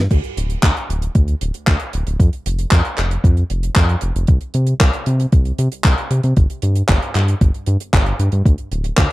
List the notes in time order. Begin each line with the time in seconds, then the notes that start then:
0.11 D2, kick, closed hi-hat, crash
0.24 closed hi-hat
0.37 D1, closed hi-hat
0.50 closed hi-hat
0.63 D2, kick, clap, closed hi-hat
0.77 closed hi-hat
0.89 D1, closed hi-hat
1.02 closed hi-hat
1.15 D2, kick, closed hi-hat
1.28 closed hi-hat
1.41 D1, closed hi-hat
1.54 closed hi-hat
1.67 D2, kick, clap, closed hi-hat
1.80 closed hi-hat
1.93 D1, closed hi-hat
2.07 D1, closed hi-hat
2.20 F2, kick, closed hi-hat
2.33 closed hi-hat
2.46 F1, closed hi-hat
2.59 closed hi-hat
2.71 F2, kick, clap, closed hi-hat
2.85 closed hi-hat
2.98 F1, clap, closed hi-hat
3.11 closed hi-hat
3.24 F2, kick, closed hi-hat
3.37 closed hi-hat
3.50 F1, closed hi-hat
3.63 closed hi-hat
3.76 F2, kick, clap, closed hi-hat
3.89 closed hi-hat
4.01 F1, closed hi-hat
4.15 F1, closed hi-hat
4.27 C2, kick, closed hi-hat
4.41 closed hi-hat
4.54 C3, closed hi-hat
4.67 closed hi-hat
4.80 C2, kick, clap, closed hi-hat
4.93 closed hi-hat
5.06 C3, closed hi-hat
5.20 closed hi-hat
5.32 C2, kick, closed hi-hat
5.45 closed hi-hat
5.58 C3, closed hi-hat
5.72 closed hi-hat
5.84 C2, kick, clap, closed hi-hat
5.98 closed hi-hat
6.11 C3, closed hi-hat
6.23 C3, closed hi-hat
6.37 G1, kick, closed hi-hat
6.50 closed hi-hat
6.62 G2, closed hi-hat
6.75 closed hi-hat
6.88 G1, kick, clap, closed hi-hat
7.02 closed hi-hat
7.15 G2, clap, closed hi-hat
7.28 closed hi-hat
7.41 G1, kick, closed hi-hat
7.54 closed hi-hat
7.66 G2, closed hi-hat
7.80 closed hi-hat
7.93 G1, kick, clap, closed hi-hat
8.06 closed hi-hat
8.19 G2, closed hi-hat
8.32 G2, closed hi-hat
8.46 D2, kick, closed hi-hat
8.58 closed hi-hat
8.71 D1, closed hi-hat
8.84 closed hi-hat
8.97 D2, kick, clap, closed hi-hat